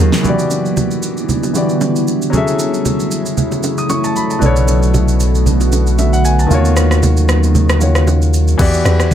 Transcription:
Already playing: C#3 D#3 F#3 A#3 D#4 F4 F#4 G#4 C#5
0.00 D#2
0.12 snare, shaker
0.21 D3 E3 G3 B3 E4 F#4, low conga, shaker
0.27 G4 D5
0.39 shaker
0.51 low bongo, shaker
0.65 shaker
0.77 high bongo, low conga, shaker
0.91 shaker
1.03 shaker
1.17 shaker
1.29 low conga, shaker
1.43 high bongo, shaker
1.53 E3 B3 F#4 G4 D5, low bongo, shaker
1.69 shaker
1.81 high bongo, low bongo, shaker
1.96 shaker
2.08 shaker
2.22 shaker
2.30 C#3 F#3 A3 C#4 E4 G#4, low conga, shaker
2.35 A4 E5
2.47 shaker
2.59 low bongo, shaker
2.74 shaker
2.85 high bongo, low conga, shaker
3.00 shaker
3.11 shaker
3.26 shaker
3.37 low conga, shaker
3.52 high bongo, shaker
3.63 low bongo, shaker
3.78 D#6, shaker
3.89 C#6, high bongo, low bongo, shaker
4.04 A5, shaker
4.16 B5, shaker
4.30 A5, shaker
4.39 B1 B2 D3 B3 D4 F#4, low conga, shaker
4.44 A4 C#5
4.56 shaker
4.68 low bongo, shaker
4.83 shaker
4.94 high bongo, low conga, shaker
5.08 shaker
5.20 shaker
5.35 shaker
5.46 low conga, shaker
5.61 high bongo, shaker
5.72 low bongo, shaker
5.87 shaker
5.98 E5, high bongo, low bongo, shaker
6.13 F#5, shaker
6.25 G#5, shaker
6.39 A5, shaker
6.47 D#2 C#3 D#3 F#3 A#3 D#4 F4, low conga, shaker
6.52 F#4 C#5
6.65 shaker
6.76 cross-stick, shaker
6.91 cross-stick, shaker
7.03 high bongo, low conga, shaker
7.17 shaker
7.29 cross-stick, shaker
7.43 shaker
7.55 low conga, shaker
7.69 cross-stick, high bongo, shaker
7.79 D#3 A#3 F4 F#4 C#5, low bongo, shaker
7.95 cross-stick, shaker
8.07 high bongo, low bongo, shaker
8.22 shaker
8.34 shaker
8.48 shaker
8.58 E2 E3 B3 F#4 G4 D5, kick, crash, shaker
8.74 shaker
8.85 E2, cross-stick, shaker
9.00 cross-stick, shaker

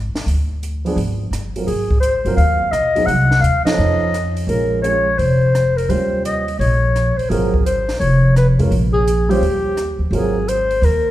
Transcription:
Already playing: G#1
0.15 muted upright bass stroke, snare, open hi-hat
0.26 D2, open hi-hat
0.63 closed hi-hat
0.85 F3 B3 D4 G#4, open hi-hat
0.96 G#1, open hi-hat
1.31 G1, cross-stick, closed hi-hat
1.56 F#3 C4 F4 A#4, open hi-hat
1.67 G#1 G#4, open hi-hat
1.91 kick
2.00 C5, closed hi-hat
2.25 G1 F#3 C4 F4 A#4, open hi-hat
2.37 D#2 F5, open hi-hat
2.72 B1 D#5, cross-stick, closed hi-hat
2.95 F#3 C4 D#4 G#4, open hi-hat
3.06 C2 F#5, open hi-hat
3.31 snare
3.41 D#2 F5, closed hi-hat
3.65 F3 C#4 D#4 A4 D#5, snare, ride
3.78 F2
4.14 cross-stick, closed hi-hat
4.37 open hi-hat
4.47 A#1 G#3 C#4 F4 A#4, open hi-hat
4.82 G#3 C#4 F4 C#5, closed hi-hat
5.18 F1 C5, open hi-hat
5.55 cross-stick, closed hi-hat
5.77 A#4, open hi-hat
5.89 D#2 G3 C#4 F4 C5, open hi-hat
6.25 D#5, closed hi-hat
6.48 open hi-hat
6.59 A#1 C#5, open hi-hat
6.96 cross-stick, closed hi-hat
7.18 C5, open hi-hat
7.30 G#1 F#3 C4 F4 G#4 A#4, open hi-hat
7.54 kick
7.66 C5, closed hi-hat
7.89 snare, open hi-hat
8.00 F1 C#5, open hi-hat
8.36 B4, cross-stick, closed hi-hat
8.59 F2 G#3 C#4 F4 A#4, open hi-hat
8.71 A#1, open hi-hat
8.94 G#4
9.08 closed hi-hat
9.29 G3 C#4 F4 G4 C5, open hi-hat
9.41 D#2, open hi-hat
9.77 cross-stick, closed hi-hat
9.99 D#2
10.11 G#1 F#3 C4 F4 G#4 A#4, open hi-hat
10.48 C5, closed hi-hat
10.71 open hi-hat
10.82 D#2 A#4, open hi-hat

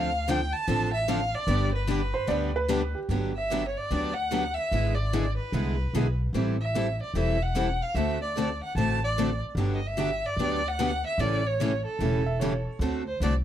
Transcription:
Already playing: D2 F5
0.28 D3 F3 C4 D4 A4 G5
0.53 A5
0.68 A1 D3 F3 C4 D4 A4
0.94 E5
1.08 D3 F3 C4 D4 A4 F5
1.35 D5
1.47 G1 D3 G3 B3 D4 G4
1.75 B4
1.87 D3 G3 B3 D4 G4
2.14 C5
2.27 D2 D3 G3 B3 D4 G4 D5
2.56 B4
2.68 D3 G3 B3 D4 G4
2.95 G4
3.09 G1 D3 F#3 B3 D4 G4
3.36 E5
3.51 D3 F#3 B3 D4 G4
3.68 C#5
3.77 D5
3.91 D2 D3 F#3 B3 D4 G4
4.14 F#5
4.31 D3 F#3 B3 D4 G4
4.54 E5
4.71 G#1 D3 G#3 B3 E4 G#4
4.95 D5
5.13 D3 G#3 B3 E4 G#4
5.37 B4
5.52 C2 D3 G#3 B3 E4 G#4
5.93 B1 D3 G#3 B3 E4 G#4
6.33 A1 E3 G3 C4 E4 A4
6.61 E5
6.75 E3 G3 C4 E4 A4
7.03 D5
7.14 E1 E3 G3 C4 E4 A4
7.18 E5
7.43 F#5
7.55 E3 G3 C4 E4 A4
7.83 F5
7.95 D2 D3 A3 C4 F#4 A4 E5
8.22 D5
8.37 D3 A3 C4 F#4 A4
8.64 F#5
8.75 A1 D3 A3 C4 F#4 A4 A5
9.04 D5
9.18 D3 A3 C4 F#4 A4
9.55 G1 D3 F#3 B3 D4 G4
9.75 D#5
9.87 E5
9.97 D3 F#3 B3 D4 G4
10.26 D5
10.37 D2 D3 F#3 B3 D4 G4
10.68 F#5
10.79 D3 F#3 B3 D4 G4
11.07 E5
11.18 A1 C#3 E3 G3 A3 C#4 E4 G4 A4 D5
11.47 C#5
11.60 C#3 E3 G3 A3 C#4 E4 G4 A4
11.86 A4
11.99 E1 C#3 E3 G3 A3 C#4 E4 G4 A4
12.26 E5
12.40 C#3 E3 G3 A3 C#4 E4 G4 A4 C#5
12.79 D2 D3 A3 C4 F#4 A4
13.08 C5
13.20 C2 D3 A3 C4 F#4 A4 D5

